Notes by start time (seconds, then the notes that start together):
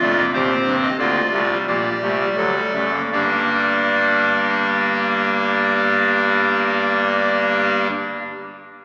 Already playing: F4
0.01 F1 F2 A3 D5
0.17 A#3
0.33 D#1 D#2 C4 G4 C5
0.66 G1 G2
0.83 D#5
0.99 D2 D3 A#3 F4 D5
1.33 C2 C3 A3
1.51 G3
1.67 A#1 A#2 A#3 G4 D5
2.02 C2 C3 A3
2.19 G3
2.37 D2 D3 F#3 A4
2.56 G3
2.74 F#1 F#2 A3
2.93 A#3
3.12 G1 G2 G3 A#3 D4 G4 D5